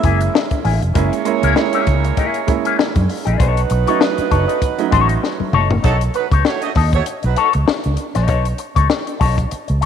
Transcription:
Already playing: G#3 A#3 C#4 E4 E5
0.03 F#1 A#3 E4 G#4, kick, closed hi-hat
0.21 muted clean electric guitar stroke, closed hi-hat
0.34 muted clean electric guitar stroke, snare
0.51 muted clean electric guitar stroke, kick, closed hi-hat
0.64 A1 A#3 E4 G#4, open hi-hat
0.82 F1, muted clean electric guitar stroke, closed hi-hat
0.94 F#1 G#3 A#3 C#4 E4 G#4 C#5, kick, closed hi-hat
1.13 closed hi-hat
1.25 G#3 A#3 C#4 E4, muted clean electric guitar stroke, closed hi-hat
1.42 C#2 A#3 E4 A#4, closed hi-hat
1.55 G#3 A#3 C#4 E4, muted clean electric guitar stroke, snare
1.73 A#3 E4 G#4, closed hi-hat
1.87 C#2, muted clean electric guitar stroke, kick, closed hi-hat
2.04 muted clean electric guitar stroke, closed hi-hat
2.17 A#3 E4 G#4, kick, closed hi-hat
2.34 closed hi-hat
2.47 G#3 A#3 C#4 E4, muted clean electric guitar stroke, kick, closed hi-hat
2.65 A#3 E4 G#4, closed hi-hat
2.78 muted clean electric guitar stroke, snare
2.95 F#2, muted clean electric guitar stroke, kick, closed hi-hat
3.09 open hi-hat
3.25 A#1 A#3 E4 G#4, closed hi-hat
3.38 B1 F#3 D#4 A4 B4 C#5, kick, closed hi-hat
3.57 closed hi-hat
3.70 B1, muted clean electric guitar stroke, closed hi-hat
3.87 F#3 A3 C#4 D#4 A4 C#5, closed hi-hat
4.00 muted clean electric guitar stroke, snare
4.17 muted clean electric guitar stroke, muted fingered electric bass stroke, closed hi-hat
4.30 F#1 D#4 A4 C#5, kick, closed hi-hat
4.48 D#4 A4 D#5, closed hi-hat
4.62 muted clean electric guitar stroke, kick, closed hi-hat
4.78 F#3 A3 C#4 D#4, muted clean electric guitar stroke, closed hi-hat
4.91 A1 D#4 A4 C#5, kick, closed hi-hat
5.09 muted clean electric guitar stroke, closed hi-hat
5.22 muted clean electric guitar stroke, snare
5.39 muted clean electric guitar stroke, muted fingered electric bass stroke, high tom
5.53 F#1 D#4 A4 C#5, mid tom
5.70 muted clean electric guitar stroke, floor tom
5.83 B1 F#3 D#4 A4 C#5, kick, closed hi-hat
6.01 closed hi-hat
6.14 F#3 D#4 B4, muted clean electric guitar stroke, closed hi-hat
6.32 C#2 D#4 A4 C#5, kick, closed hi-hat
6.45 A3 F#4 C#5, snare
6.62 A3 F#4 D#5, muted clean electric guitar stroke, closed hi-hat
6.75 D#2 D#4 A4 D#5, kick, open hi-hat
6.93 A3 F#4 C#5, muted clean electric guitar stroke, kick, closed hi-hat
7.06 muted clean electric guitar stroke, closed hi-hat
7.23 B1 F#3 D#4 B4, muted clean electric guitar stroke, closed hi-hat
7.36 F#3 D#4 A4 C#5, closed hi-hat
7.53 C#2, muted clean electric guitar stroke, closed hi-hat
7.66 muted clean electric guitar stroke, snare
7.84 C#2, muted clean electric guitar stroke, closed hi-hat
7.97 closed hi-hat
8.15 A#1 D#4 A4 C#5, snare, closed hi-hat
8.27 B1 D#4 A4 C#5, kick, closed hi-hat
8.45 closed hi-hat
8.58 muted clean electric guitar stroke, closed hi-hat
8.75 C#2 D#4 A4 C#5, kick, closed hi-hat
8.90 snare
9.07 muted clean electric guitar stroke, closed hi-hat
9.19 B1 D#4 A4 C#5, kick, open hi-hat
9.37 muted clean electric guitar stroke, kick, closed hi-hat
9.50 muted clean electric guitar stroke, muted fingered electric bass stroke, closed hi-hat
9.68 C#2, muted clean electric guitar stroke, closed hi-hat
9.81 D#4 A4, closed hi-hat

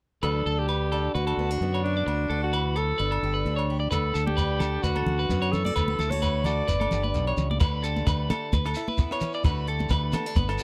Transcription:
0.23 D2 D3 F#3 D4 A4 B4, low agogo
0.46 D2 D4 A4
0.59 G4
0.69 B4, low agogo
0.92 D4 A4, low agogo
1.14 D2 D3 D4 F#4 B4
1.27 A4, low agogo
1.37 D2 B3
1.51 D4
1.61 F#2 B3 D4
1.74 C#5, low agogo
1.83 D4 F#4
1.97 D5
2.06 D2 D3 F#4, muted clean electric guitar stroke, low agogo
2.30 D2 F#4 A4
2.43 F#4
2.53 E3 B4, low agogo
2.76 F#3 A4, low agogo
2.98 G1 G2 D4 B4
3.11 A4, low agogo
3.23 G1 G4
3.34 B4
3.45 D2 D3 D4
3.56 C#5, low agogo
3.70 G4
3.80 D5
3.91 D2 D3 A4 B4, muted steel-string acoustic guitar stroke, low agogo, shekere
4.14 D2 D4 A4, shekere
4.26 G4, high conga
4.37 D4 B4, low agogo, shekere
4.59 D4 A4, low conga, low agogo, shekere
4.83 D2 D3 C#4 F#4 B4, shekere
4.96 A4, high conga, low agogo
5.06 D2 C#4, low conga
5.19 B4
5.29 F#2 B3 C#4, shekere
5.42 C#5, low agogo
5.52 E4 A4, low conga, shekere
5.65 F#4 D5, high conga
5.76 D2 D3 B4, muted steel-string acoustic guitar stroke, low agogo, shekere
5.88 F#4, high conga
5.99 D2 E4 A4, low conga, shekere
6.10 F#4 C#5, high conga
6.22 A3 F#4 B4, low agogo, shekere
6.44 F#4 A4 D5, low conga, low agogo, shekere
6.67 G1 G2 D4 B4, shekere
6.80 A4, high conga, low agogo
6.91 G1 G4, low conga, shekere
7.03 B4, high conga
7.14 B1 B2, shekere
7.27 C#5, low agogo
7.37 C#2 C#3, low conga, shekere
7.51 D5, high conga
7.60 D2 D3 D4 B4, kick, cross-stick, crash, low agogo, shekere
7.83 G4 A4, closed hi-hat, shekere
7.96 high conga, shekere
8.07 D2 A3 B4, kick, cross-stick, low agogo, shekere
8.30 D4 A4, cross-stick, closed hi-hat, high conga, low conga, low agogo
8.53 D2 B4, muted steel-string acoustic guitar stroke, kick, high conga, shekere
8.64 A4, cross-stick, low agogo, shekere
8.74 E4, closed hi-hat, shekere
8.88 B4, high conga
8.97 B3, kick, shekere
9.11 C#5, cross-stick, low agogo
9.20 C#4, closed hi-hat, low conga, shekere
9.33 D5, shekere
9.44 D2 D3 A3 D4 F#4 B4, kick, cross-stick, low agogo, shekere
9.68 G4 A4, closed hi-hat
9.79 high conga, shekere
9.89 D2 A3 B4, kick, cross-stick, low agogo, shekere
10.12 B3 A4, cross-stick, closed hi-hat, high conga, low conga, low agogo, shekere
10.26 D4
10.35 G1 B3 B4, muted steel-string acoustic guitar stroke, kick, high conga, shekere
10.48 A4, cross-stick, low agogo, shekere
10.58 closed hi-hat, shekere

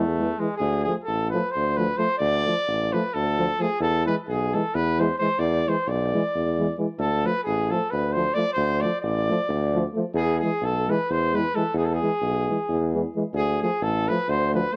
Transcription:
Already playing: E2 A3
0.17 E3 G#3
0.39 E3 G#3
0.57 D2 G#4
0.83 F3 A3 G#4
1.04 A1 A4
1.30 F3 A3 B4
1.51 C5
1.56 D2
1.77 F3 A3 B4
1.97 F3 A3 C5
2.18 D2 D5
2.45 F3 A3
2.68 A1
2.93 F3 A3 B4
3.14 D2 A4
3.39 F3 A3
3.59 F3 A3 G#4
3.80 E2 A4
4.06 E3 G#3 B4
4.28 B1 G#4
4.54 E3 G#3 A4
4.75 E2 B4
4.99 E3 G#3 C5
5.18 E3 G#3 C5
5.39 E2 D5
5.68 E3 G#3 C5
5.87 B1 D5
6.14 E3 G#3
6.35 E2
6.59 E3 G#3
6.78 E3 G#3
6.99 D2 A4
7.24 F3 A3 B4
7.44 A1 G#4
7.71 F3 A3 A4
7.91 D2 B4
8.12 F3 C5
8.17 A3
8.34 F3 A3 D5
8.53 C5
8.57 D2
8.81 F3 A3 D5
9.01 A1 D5
9.29 F3 A3
9.49 D2
9.74 F3 A3
9.94 F3 A3
10.14 E2 G#4
10.39 E3 G#3 G#4
10.62 B1 A4
10.88 E3 G#3 B4
11.10 E2 C5
11.33 E3 G#3 B4
11.54 E3 G#3 A4
11.73 E2 G#4
11.85 A4
11.94 G#4
12.02 E3 G#3
12.22 B1
12.49 E3 G#3
12.68 E2
12.94 E3 G#3
13.15 E3 G#3
13.33 D2 G#4
13.61 F3 A3 G#4
13.81 A1 A4
14.08 F3 A3 B4
14.28 D2 C5
14.52 F3 A3 B4
14.73 C5

